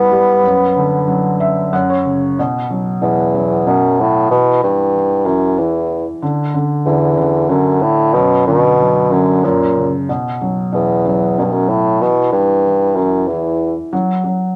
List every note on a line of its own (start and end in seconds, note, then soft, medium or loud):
0.00 0.39 G2 medium
0.00 0.45 E3 soft
0.00 0.11 G3 medium
0.00 1.74 B3 loud
0.11 0.42 G3 medium
0.44 1.69 F#2 medium
0.76 1.70 D3 soft
1.08 1.70 F#3 soft
1.40 1.70 E5 medium
1.73 2.36 F#2 medium
1.73 1.88 F#5 medium
1.90 2.35 C#5 medium
2.05 2.37 C#3 soft
2.39 3.00 B2 medium
2.70 3.33 F#3 soft
3.02 3.68 E2 medium
3.02 3.65 B2 soft
3.35 4.28 F#3 soft
3.67 4.02 F#2 medium
3.67 4.28 B2 medium
4.00 4.30 A2 medium
4.30 4.60 B2 medium
4.30 4.61 E3 medium
4.63 5.28 G2 medium
4.63 4.92 E3 soft
4.94 5.23 E3 soft
5.25 5.60 F#2 medium
5.25 5.56 E3 soft
5.58 6.06 E2 medium
5.58 6.20 E3 medium
6.22 6.53 D3 medium
6.54 6.85 D3 soft
6.86 7.51 E2 medium
6.86 7.16 D3 soft
7.17 7.48 D3 soft
7.49 7.83 F#2 medium
7.49 8.12 D3 medium
7.82 8.15 A2 medium
8.13 9.39 F#2 medium
8.13 8.46 B2 loud
8.47 9.13 B2 loud
8.47 9.09 D3 soft
8.79 9.41 F#3 soft
9.11 9.46 F#2 medium
9.11 9.42 D3 soft
9.43 10.06 F#2 medium
9.43 9.92 A#2 medium
9.77 10.08 C#3 soft
10.09 10.71 B2 medium
10.41 11.04 F#3 soft
10.72 11.40 E2 medium
10.72 11.37 B2 soft
11.05 11.98 F#3 soft
11.38 11.45 F#2 medium
11.38 12.00 B2 soft
11.44 11.54 G2 medium
11.52 11.70 F#2 medium
11.69 12.03 A2 medium
12.01 12.31 B2 medium
12.01 12.33 E3 medium
12.32 12.98 G2 medium
12.32 12.64 E3 soft
12.66 12.97 E3 soft
12.96 13.29 F#2 medium
12.96 13.28 E3 soft
13.27 13.75 E2 medium
13.27 13.91 E3 medium
13.93 14.23 F#3 medium
14.24 14.55 F#3 soft